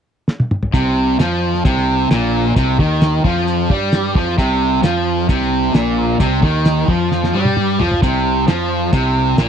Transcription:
0.28 snare medium
0.40 high tom medium
0.51 mid tom medium
0.63 floor tom medium
0.73 1.16 C2 medium
0.73 1.19 C3 medium
0.73 kick medium
0.73 closed hi-hat medium
1.19 1.62 F2 medium
1.19 1.65 F3 medium
1.19 snare medium
1.19 closed hi-hat medium
1.54 snare soft
1.65 2.07 C2 medium
1.65 2.10 C3 loud
1.65 kick loud
1.65 closed hi-hat medium
1.77 snare soft
2.11 2.53 A#1 medium
2.11 2.56 A#2 loud
2.11 snare loud
2.11 closed hi-hat medium
2.56 2.78 C2 medium
2.56 2.79 C3 medium
2.56 kick medium
2.56 closed hi-hat medium
2.79 3.22 D#2 loud
2.79 3.24 D#3 medium
2.79 kick loud
3.01 snare medium
3.01 closed hi-hat medium
3.24 3.67 F2 medium
3.24 3.70 F3 loud
3.24 kick loud
3.36 snare soft
3.48 closed hi-hat medium
3.70 4.13 G2 medium
3.70 4.15 G3 medium
3.70 kick medium
3.92 snare loud
3.92 closed hi-hat medium
4.15 4.37 F2 medium
4.15 4.38 F3 loud
4.15 kick loud
4.38 4.81 C2 medium
4.38 4.82 C3 loud
4.38 kick loud
4.38 closed hi-hat medium
4.83 5.26 F2 medium
4.83 5.28 F3 medium
4.83 snare medium
4.83 closed hi-hat medium
5.29 5.72 C2 medium
5.29 5.75 C3 loud
5.29 kick loud
5.29 closed hi-hat medium
5.41 snare soft
5.74 6.17 A#1 medium
5.74 6.20 A#2 loud
5.74 snare loud
5.74 closed hi-hat medium
6.20 6.42 C2 medium
6.20 6.42 C3 loud
6.20 kick loud
6.20 closed hi-hat medium
6.42 6.85 D#2 medium
6.42 6.88 D#3 medium
6.42 kick medium
6.65 snare medium
6.65 closed hi-hat medium
6.88 7.31 F2 medium
6.88 7.33 F3 loud
6.88 kick loud
7.12 snare medium
7.24 snare medium
7.34 7.76 G2 medium
7.34 7.79 G3 medium
7.45 high tom medium
7.57 mid tom medium
7.79 8.01 F2 medium
7.79 8.01 F3 medium
7.79 floor tom medium
7.91 floor tom medium
8.02 8.45 C2 medium
8.02 8.47 C3 medium
8.02 kick loud
8.02 closed hi-hat medium
8.48 8.90 F2 medium
8.48 8.92 F3 medium
8.48 snare medium
8.48 closed hi-hat soft
8.93 9.35 C2 medium
8.93 9.38 C3 loud
8.93 kick loud
8.93 closed hi-hat medium
9.38 9.49 A#1 medium
9.38 9.49 A#2 loud
9.38 snare loud
9.38 closed hi-hat medium

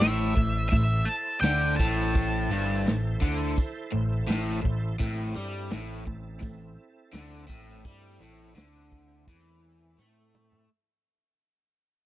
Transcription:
0.00 0.34 A1 medium
0.00 0.35 A2 medium
0.00 2.12 E4 medium
0.00 2.12 A4 medium
0.00 2.12 C5 medium
0.00 0.68 E5 medium
0.00 snare loud
0.00 open hi-hat medium
0.36 0.70 A1 medium
0.36 0.65 A2 medium
0.36 kick medium
0.69 1.05 A1 medium
0.69 1.01 A2 medium
0.69 1.07 E5 medium
0.69 kick medium
0.73 open hi-hat medium
1.05 1.40 A5 medium
1.41 1.76 D2 medium
1.41 1.78 D3 loud
1.41 1.76 G5 loud
1.41 snare loud
1.41 open hi-hat soft
1.76 2.47 A1 loud
1.76 2.50 A2 loud
1.76 9.93 A5 medium
1.76 kick medium
2.13 4.96 E4 medium
2.13 4.97 A4 medium
2.13 4.96 C5 medium
2.13 kick loud
2.13 open hi-hat medium
2.49 2.83 G1 medium
2.49 2.86 G2 loud
2.84 3.18 A1 medium
2.84 3.15 A2 medium
2.84 snare loud
2.84 open hi-hat medium
3.21 3.55 D2 loud
3.21 3.56 D3 medium
3.21 kick medium
3.58 kick loud
3.58 open hi-hat medium
3.92 4.27 A1 medium
3.92 4.21 A2 medium
4.28 4.62 A1 medium
4.28 4.61 A2 loud
4.28 snare loud
4.28 open hi-hat medium
4.62 4.97 A1 medium
4.62 4.92 A2 medium
4.62 kick medium
5.00 5.33 A1 loud
5.00 5.34 A2 loud
5.00 7.82 C4 medium
5.00 7.82 E4 medium
5.00 7.82 A4 medium
5.00 kick loud
5.00 open hi-hat medium
5.36 5.69 G2 medium
5.36 5.70 G3 loud
5.71 6.05 A1 medium
5.71 6.05 A2 loud
5.71 snare loud
5.71 open hi-hat medium
6.06 6.40 A1 medium
6.06 6.35 A2 medium
6.06 kick medium
6.41 6.76 A1 medium
6.41 6.70 A2 medium
6.41 kick loud
6.41 open hi-hat soft
7.13 7.47 D2 medium
7.13 7.47 D3 loud
7.13 snare loud
7.13 open hi-hat medium
7.47 7.82 A1 loud
7.47 7.83 A2 medium
7.47 kick medium
7.83 8.18 G2 medium
7.83 8.20 G3 loud
7.83 10.66 A3 medium
7.83 10.66 C4 medium
7.83 10.67 E4 medium
7.83 kick loud
7.83 open hi-hat medium
8.20 8.54 A1 medium
8.20 8.55 A2 loud
8.55 9.23 D2 medium
8.55 9.26 D3 loud
8.55 snare loud
8.55 open hi-hat medium
8.92 kick medium
9.27 9.95 E2 medium
9.27 9.98 E3 loud
9.27 kick medium
9.27 open hi-hat soft
9.98 10.66 A2 medium
9.98 10.69 A3 loud
9.98 snare medium
10.35 mid tom medium
10.52 floor tom medium

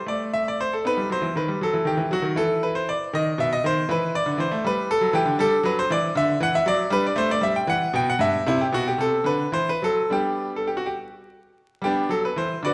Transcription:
0.06 0.62 A3 medium
0.06 0.30 D5 loud
0.34 0.46 E5 loud
0.48 0.60 D5 medium
0.60 0.72 C5 loud
0.73 0.85 A4 medium
0.85 0.97 B3 medium
0.85 2.34 D#4 medium
0.85 1.08 B4 loud
0.97 1.09 G3 medium
1.10 1.22 F#3 medium
1.10 1.33 C5 loud
1.22 1.34 E3 medium
1.36 1.48 D#3 medium
1.36 1.58 B4 medium
1.48 1.60 G3 medium
1.61 1.73 F#3 medium
1.61 1.87 A4 loud
1.73 1.85 E3 medium
1.85 1.97 D#3 medium
1.85 2.12 G4 loud
1.97 2.10 E3 medium
2.11 2.23 F#3 medium
2.11 2.34 F#4 loud
2.22 2.35 D#3 medium
2.36 2.91 E3 medium
2.36 3.08 E4 soft
2.36 2.63 A4 loud
2.63 2.75 B4 medium
2.75 2.88 C5 loud
2.89 3.13 D5 loud
3.13 3.31 D#3 medium
3.13 3.39 D#5 loud
3.38 3.56 B2 medium
3.38 3.52 E5 loud
3.53 3.64 D#5 loud
3.64 3.82 D#3 medium
3.64 3.86 C5 loud
3.89 4.15 E3 medium
3.89 5.34 E4 medium
3.89 4.14 B4 loud
4.15 4.39 D5 loud
4.26 4.37 D3 medium
4.38 4.50 E3 medium
4.38 4.64 C5 medium
4.51 4.63 A3 medium
4.64 4.91 G3 medium
4.64 4.90 B4 loud
4.91 5.14 A4 loud
5.01 5.13 F#3 medium
5.13 5.25 E3 medium
5.13 5.39 G4 loud
5.26 5.37 D3 medium
5.39 5.57 G3 medium
5.39 6.10 D4 medium
5.39 5.61 A4 loud
5.63 5.82 F#3 medium
5.63 5.77 B4 loud
5.79 5.90 C5 loud
5.90 6.08 E3 medium
5.90 6.12 D5 loud
6.15 6.33 D3 medium
6.15 6.37 E5 loud
6.40 6.58 E3 medium
6.40 6.54 F#5 loud
6.55 6.66 E5 loud
6.66 6.84 F#3 medium
6.66 6.88 D5 loud
6.90 7.09 G3 loud
6.90 7.63 D4 medium
6.90 7.04 B4 loud
7.06 7.17 D5 medium
7.16 7.34 A3 medium
7.16 7.29 C5 loud
7.31 7.43 D5 loud
7.41 7.60 G3 medium
7.41 7.55 E5 loud
7.56 7.68 G5 loud
7.67 7.86 E3 medium
7.67 7.95 F#5 loud
7.93 8.12 B2 medium
7.93 8.08 G5 loud
8.10 8.21 F#5 loud
8.19 8.38 G2 medium
8.19 8.46 E5 loud
8.46 8.65 C3 loud
8.46 8.60 E4 loud
8.61 8.73 G4 medium
8.72 8.91 B2 medium
8.72 8.86 F#4 loud
8.88 9.00 G4 loud
8.98 9.18 C3 medium
8.98 9.27 A4 loud
9.24 9.45 D3 medium
9.24 9.49 B4 loud
9.52 9.73 E3 medium
9.52 9.67 C5 loud
9.69 9.83 B4 loud
9.82 10.03 F#3 medium
9.82 10.12 A4 loud
10.10 10.71 G3 medium
10.10 10.79 B3 medium
10.10 10.79 D4 medium
10.10 10.51 G4 loud
10.56 10.66 A4 medium
10.67 10.77 G4 medium
10.77 10.87 F#4 medium
10.86 10.96 G4 medium
11.82 12.01 G3 medium
11.82 12.08 B3 medium
11.82 12.08 D4 medium
11.82 12.09 G4 loud
12.09 12.28 F#3 medium
12.09 12.22 A4 loud
12.25 12.36 B4 medium
12.36 12.54 E3 medium
12.36 12.58 C5 medium
12.63 12.74 D3 medium
12.63 12.74 F#4 medium
12.63 12.74 B4 medium
12.63 12.74 D5 loud

